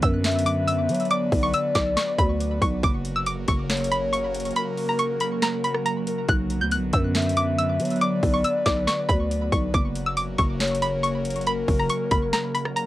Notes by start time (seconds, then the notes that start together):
Already playing: D3 F#3 B3
0.02 F#2 E6, kick, closed hi-hat
0.24 E5, snare, closed hi-hat
0.32 closed hi-hat
0.39 closed hi-hat
0.46 D6, closed hi-hat
0.68 E6, closed hi-hat
0.89 F#3, closed hi-hat
0.94 closed hi-hat
1.00 closed hi-hat
1.05 closed hi-hat
1.11 D5 D6, closed hi-hat
1.32 B1, kick, open hi-hat
1.43 C#6
1.54 E6, closed hi-hat
1.75 B1 D6, kick, snare, closed hi-hat
1.97 C#6, snare, closed hi-hat
2.18 D2 B5, kick, closed hi-hat
2.40 closed hi-hat
2.62 B1 C#6, kick, closed hi-hat
2.83 F#1 C#3 A#3 D6, kick, closed hi-hat
3.05 closed hi-hat
3.16 E6
3.26 D6, closed hi-hat
3.48 F#1 C#6, kick, closed hi-hat
3.70 C#5, snare, closed hi-hat
3.77 closed hi-hat
3.84 closed hi-hat
3.92 B5, closed hi-hat
4.13 C#6, closed hi-hat
4.34 closed hi-hat
4.40 closed hi-hat
4.45 closed hi-hat
4.51 closed hi-hat
4.56 A#4 B5, closed hi-hat
4.77 open hi-hat
4.89 A#5
4.99 C#6, closed hi-hat
5.20 B5, closed hi-hat
5.42 A#5, snare, closed hi-hat
5.64 B5, closed hi-hat
5.74 cross-stick
5.86 A#5, closed hi-hat
6.07 A#4, closed hi-hat
6.29 B1 D3 B3 F#6, kick, closed hi-hat
6.50 closed hi-hat
6.61 D2 G6
6.71 F#6, closed hi-hat
6.77 B1
6.93 F#2 E6, kick, closed hi-hat
7.15 E5, snare, closed hi-hat
7.22 closed hi-hat
7.29 closed hi-hat
7.37 D6, closed hi-hat
7.58 E6, closed hi-hat
7.80 F#3, closed hi-hat
7.85 closed hi-hat
7.90 closed hi-hat
7.96 closed hi-hat
8.01 D5 D6, closed hi-hat
8.23 B1, kick, open hi-hat
8.34 C#6
8.44 E6, closed hi-hat
8.66 B1 D6, kick, snare, closed hi-hat
8.87 C#6, snare, closed hi-hat
9.09 D2 B5, kick, closed hi-hat
9.31 closed hi-hat
9.52 B1 C#6, kick, closed hi-hat
9.74 F#1 C#3 F#3 A#3 D6, kick, closed hi-hat
9.95 closed hi-hat
10.06 E6
10.17 D6, closed hi-hat
10.38 F#1 C#6, kick, closed hi-hat
10.60 C#5, snare, closed hi-hat
10.67 closed hi-hat
10.75 closed hi-hat
10.82 B5, closed hi-hat
11.03 C#6, closed hi-hat
11.25 closed hi-hat
11.30 closed hi-hat
11.36 closed hi-hat
11.41 closed hi-hat
11.47 A#4 B5, closed hi-hat
11.68 F#1, kick, open hi-hat
11.79 A#5
11.89 C#6, closed hi-hat
12.11 F#1 B5, kick, closed hi-hat
12.33 A#5, snare, closed hi-hat
12.55 B5, closed hi-hat
12.65 cross-stick
12.76 A#5, closed hi-hat